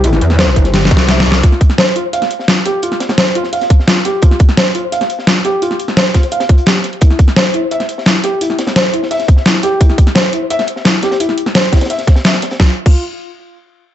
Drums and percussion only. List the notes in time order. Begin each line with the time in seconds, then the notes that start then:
0.04 closed hi-hat
0.13 snare
0.21 closed hi-hat
0.30 snare
0.39 snare, closed hi-hat
0.56 kick, closed hi-hat
0.64 snare, closed hi-hat
0.74 snare, closed hi-hat, open hi-hat
0.82 snare, closed hi-hat
0.85 snare
0.91 kick, closed hi-hat
0.97 snare
0.99 snare
1.08 snare, closed hi-hat
1.17 snare
1.20 snare
1.26 snare, closed hi-hat
1.32 snare
1.43 kick, closed hi-hat
1.52 snare
1.61 kick, closed hi-hat
1.70 snare, closed hi-hat
1.78 snare, closed hi-hat
1.87 closed hi-hat
1.96 closed hi-hat
2.13 closed hi-hat
2.22 snare, closed hi-hat
2.30 closed hi-hat
2.39 snare
2.48 snare, closed hi-hat
2.65 snare, closed hi-hat
2.82 closed hi-hat
2.92 snare
3.00 snare, closed hi-hat
3.09 snare, closed hi-hat
3.18 snare, closed hi-hat
3.35 closed hi-hat
3.44 snare
3.53 closed hi-hat, open hi-hat
3.61 snare, closed hi-hat
3.70 kick, closed hi-hat
3.79 snare
3.87 snare, closed hi-hat
3.96 snare
4.05 snare, closed hi-hat
4.22 kick, closed hi-hat
4.31 snare
4.39 kick, closed hi-hat
4.49 snare, closed hi-hat
4.57 snare, closed hi-hat
4.66 closed hi-hat
4.75 closed hi-hat
4.92 closed hi-hat
5.01 snare, closed hi-hat
5.10 closed hi-hat
5.19 snare
5.27 snare, closed hi-hat
5.44 snare, closed hi-hat
5.62 closed hi-hat
5.71 snare
5.79 closed hi-hat
5.88 snare
5.97 snare, closed hi-hat
6.14 kick, snare, closed hi-hat
6.23 closed hi-hat
6.31 closed hi-hat
6.40 snare, closed hi-hat
6.49 kick, closed hi-hat
6.58 closed hi-hat
6.66 snare, closed hi-hat
6.76 snare
6.84 snare, closed hi-hat
6.93 closed hi-hat
7.01 kick, closed hi-hat
7.10 snare
7.19 kick, closed hi-hat
7.28 snare, closed hi-hat
7.36 snare, closed hi-hat
7.45 closed hi-hat
7.54 closed hi-hat
7.71 closed hi-hat
7.80 snare, closed hi-hat
7.89 closed hi-hat
7.98 snare
8.06 snare, closed hi-hat
8.23 snare, closed hi-hat
8.41 closed hi-hat
8.50 snare
8.58 snare, closed hi-hat
8.67 snare, closed hi-hat
8.76 snare, closed hi-hat
8.93 closed hi-hat
9.03 snare
9.11 closed hi-hat, open hi-hat
9.19 snare, closed hi-hat
9.28 kick, closed hi-hat
9.37 snare
9.45 snare, closed hi-hat
9.54 snare
9.63 snare, closed hi-hat
9.80 kick, closed hi-hat
9.89 snare
9.98 kick, closed hi-hat
10.07 snare, closed hi-hat
10.15 snare, closed hi-hat
10.24 closed hi-hat
10.33 closed hi-hat
10.50 closed hi-hat
10.59 snare, closed hi-hat
10.67 closed hi-hat
10.76 snare
10.85 snare, closed hi-hat
11.02 snare, closed hi-hat
11.11 snare, closed hi-hat
11.20 closed hi-hat
11.29 snare
11.38 closed hi-hat
11.46 snare
11.55 snare, closed hi-hat
11.73 kick, snare, closed hi-hat
11.76 snare, closed hi-hat
11.81 snare, closed hi-hat
11.85 snare, closed hi-hat
11.90 closed hi-hat, open hi-hat
11.98 snare, closed hi-hat
12.07 kick, snare, closed hi-hat
12.16 snare, closed hi-hat
12.24 snare, closed hi-hat
12.34 snare, closed hi-hat
12.42 snare, closed hi-hat
12.51 snare, closed hi-hat
12.60 kick, snare
12.86 kick, crash